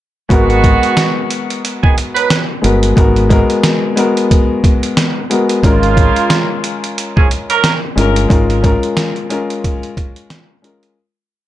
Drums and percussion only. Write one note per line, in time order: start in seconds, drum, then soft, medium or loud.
0.30 kick loud
0.30 closed hi-hat medium
0.50 closed hi-hat soft
0.64 kick loud
0.64 closed hi-hat medium
0.83 closed hi-hat soft
0.97 snare loud
0.97 closed hi-hat medium
1.30 closed hi-hat medium
1.50 closed hi-hat medium
1.65 closed hi-hat medium
1.84 kick medium
1.98 closed hi-hat medium
2.16 closed hi-hat medium
2.30 snare loud
2.30 closed hi-hat loud
2.64 closed hi-hat medium
2.83 closed hi-hat medium
2.97 kick loud
2.97 closed hi-hat medium
3.16 closed hi-hat soft
3.30 kick loud
3.30 closed hi-hat medium
3.50 closed hi-hat soft
3.63 snare loud
3.63 closed hi-hat medium
3.97 closed hi-hat medium
4.17 closed hi-hat medium
4.31 kick loud
4.31 closed hi-hat medium
4.64 kick medium
4.64 closed hi-hat medium
4.83 closed hi-hat medium
4.97 snare loud
4.97 closed hi-hat loud
5.31 closed hi-hat medium
5.49 closed hi-hat medium
5.63 kick loud
5.63 closed hi-hat medium
5.83 closed hi-hat soft
5.97 kick loud
5.97 closed hi-hat medium
6.16 closed hi-hat soft
6.30 snare loud
6.30 closed hi-hat medium
6.64 closed hi-hat medium
6.84 closed hi-hat medium
6.98 closed hi-hat medium
7.17 kick medium
7.31 closed hi-hat medium
7.50 closed hi-hat medium
7.64 snare loud
7.64 closed hi-hat loud
7.98 closed hi-hat medium
8.16 closed hi-hat medium
8.30 kick loud
8.30 closed hi-hat medium
8.50 closed hi-hat soft
8.64 kick loud
8.64 closed hi-hat medium
8.83 closed hi-hat soft
8.97 snare loud
8.97 closed hi-hat medium
9.16 closed hi-hat soft
9.30 closed hi-hat medium
9.50 closed hi-hat medium
9.64 kick loud
9.64 closed hi-hat medium
9.83 closed hi-hat soft
9.97 kick medium
9.97 closed hi-hat medium
10.16 closed hi-hat medium
10.30 snare loud
10.30 closed hi-hat loud
10.64 closed hi-hat medium
10.83 closed hi-hat medium